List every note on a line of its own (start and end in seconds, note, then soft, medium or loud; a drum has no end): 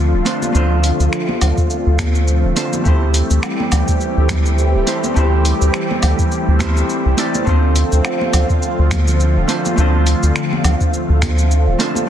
0.00 0.15 D2 medium
0.00 2.82 D3 medium
0.00 2.82 F3 medium
0.00 0.22 A3 medium
0.00 12.05 A3 medium
0.00 0.22 C4 medium
0.00 12.05 C4 medium
0.00 0.23 D4 medium
0.00 0.23 F4 medium
0.00 2.82 F4 medium
0.00 0.24 C5 medium
0.13 0.22 D1 medium
0.25 0.51 A3 medium
0.25 0.52 C4 medium
0.25 0.52 D4 medium
0.25 0.52 F4 medium
0.25 0.52 C5 medium
0.25 closed hi-hat medium
0.25 shaker medium
0.42 high conga medium
0.42 shaker soft
0.52 0.91 D2 loud
0.52 2.53 A3 medium
0.52 2.53 C4 medium
0.52 2.54 D4 medium
0.52 2.54 F4 medium
0.52 shaker soft
0.57 2.55 C5 medium
0.84 closed hi-hat medium
0.84 shaker medium
1.00 1.08 D2 medium
1.00 shaker soft
1.13 finger snap medium
1.13 shaker soft
1.29 high conga medium
1.41 1.52 D2 medium
1.41 closed hi-hat medium
1.41 low conga medium
1.41 low woodblock medium
1.41 shaker medium
1.58 kick loud
1.58 shaker soft
1.70 shaker soft
1.86 2.46 D2 medium
1.99 finger snap medium
1.99 kick loud
1.99 closed hi-hat medium
1.99 high conga medium
1.99 shaker medium
2.15 shaker soft
2.28 shaker soft
2.44 2.53 D1 medium
2.56 2.82 A3 medium
2.56 2.82 C4 medium
2.56 2.83 D4 medium
2.56 2.83 F4 medium
2.56 2.83 C5 medium
2.56 closed hi-hat medium
2.56 shaker medium
2.73 high conga medium
2.73 shaker soft
2.84 3.22 D2 medium
2.84 7.43 E3 medium
2.84 7.43 G3 medium
2.84 4.84 A3 medium
2.84 4.84 C4 medium
2.84 4.85 E4 medium
2.84 7.43 G4 medium
2.84 4.85 G4 medium
2.84 kick loud
2.84 shaker soft
2.88 4.86 C5 medium
3.14 closed hi-hat medium
3.14 shaker medium
3.30 3.39 D2 medium
3.30 shaker soft
3.43 finger snap medium
3.43 low woodblock medium
3.43 shaker soft
3.60 high conga loud
3.72 3.83 D2 medium
3.72 closed hi-hat medium
3.72 low conga medium
3.72 low woodblock medium
3.72 shaker medium
3.88 kick loud
3.88 shaker soft
4.01 shaker soft
4.17 4.76 D2 medium
4.29 finger snap medium
4.29 kick loud
4.29 closed hi-hat medium
4.29 high conga medium
4.29 low conga medium
4.29 shaker medium
4.46 shaker soft
4.58 shaker soft
4.75 4.83 D1 medium
4.86 5.13 A3 medium
4.86 5.13 C4 medium
4.86 5.13 E4 medium
4.86 5.14 G4 medium
4.86 5.14 C5 medium
4.86 closed hi-hat medium
4.86 shaker medium
5.04 high conga medium
5.04 shaker soft
5.14 5.53 D2 loud
5.14 6.57 A3 medium
5.14 6.58 C4 medium
5.14 6.58 E4 medium
5.14 6.59 G4 medium
5.14 shaker soft
5.19 6.59 C5 medium
5.45 closed hi-hat medium
5.45 shaker medium
5.61 5.70 D2 medium
5.61 shaker soft
5.74 finger snap medium
5.74 shaker soft
5.91 high conga medium
6.03 6.14 D2 medium
6.03 closed hi-hat medium
6.03 low conga medium
6.03 low woodblock medium
6.03 shaker medium
6.19 kick medium
6.19 shaker soft
6.31 shaker soft
6.48 6.83 D2 medium
6.59 7.15 A3 medium
6.59 7.15 C4 medium
6.59 7.15 E4 medium
6.59 7.15 G4 medium
6.59 7.16 C5 loud
6.59 finger snap medium
6.59 kick loud
6.59 closed hi-hat medium
6.59 high conga medium
6.59 shaker medium
6.77 shaker soft
6.89 shaker soft
7.06 7.14 C2 medium
7.17 7.44 A3 medium
7.17 7.44 C4 medium
7.17 7.44 E4 medium
7.17 7.44 G4 medium
7.17 7.45 D5 medium
7.17 closed hi-hat medium
7.17 shaker medium
7.34 high conga medium
7.34 shaker soft
7.45 7.84 D2 loud
7.45 12.05 D3 medium
7.45 12.05 F3 medium
7.45 9.45 A3 medium
7.45 9.46 C4 medium
7.45 9.46 D4 medium
7.45 12.05 F4 medium
7.45 9.47 F4 medium
7.45 kick loud
7.45 shaker soft
7.49 9.47 C5 medium
7.76 closed hi-hat medium
7.76 shaker medium
7.92 8.01 D2 medium
7.92 shaker soft
8.05 finger snap medium
8.05 low woodblock medium
8.05 shaker soft
8.21 high conga medium
8.33 8.45 D2 medium
8.33 closed hi-hat medium
8.33 low conga medium
8.33 low woodblock medium
8.33 shaker medium
8.50 kick medium
8.50 shaker soft
8.62 shaker soft
8.79 9.38 D2 medium
8.91 finger snap medium
8.91 kick loud
8.91 closed hi-hat medium
8.91 high conga medium
8.91 low conga medium
8.91 shaker medium
9.07 shaker soft
9.20 shaker soft
9.37 9.45 D1 loud
9.48 9.74 A3 medium
9.48 9.75 C4 medium
9.48 9.75 D4 medium
9.48 9.75 F4 medium
9.48 9.75 C5 medium
9.48 closed hi-hat medium
9.48 shaker medium
9.65 high conga medium
9.65 shaker soft
9.76 10.14 D2 loud
9.76 11.76 A3 medium
9.76 11.76 C4 medium
9.76 11.77 D4 medium
9.76 11.77 F4 medium
9.76 shaker soft
9.80 11.78 C5 medium
10.07 closed hi-hat medium
10.07 shaker medium
10.23 10.31 D2 medium
10.23 shaker soft
10.36 finger snap medium
10.36 shaker soft
10.53 high conga medium
10.64 10.75 D2 medium
10.64 closed hi-hat medium
10.64 low conga medium
10.64 low woodblock medium
10.64 shaker medium
10.81 kick medium
10.81 shaker soft
10.93 shaker soft
11.09 11.68 D2 medium
11.22 finger snap medium
11.22 kick loud
11.22 closed hi-hat medium
11.22 high conga medium
11.22 shaker medium
11.38 shaker soft
11.51 shaker soft
11.67 11.76 D1 medium
11.79 12.05 A3 medium
11.79 12.05 C4 medium
11.79 12.06 D4 medium
11.79 12.06 F4 medium
11.79 12.06 C5 medium
11.79 closed hi-hat medium
11.79 shaker medium
11.95 high conga medium
11.95 shaker soft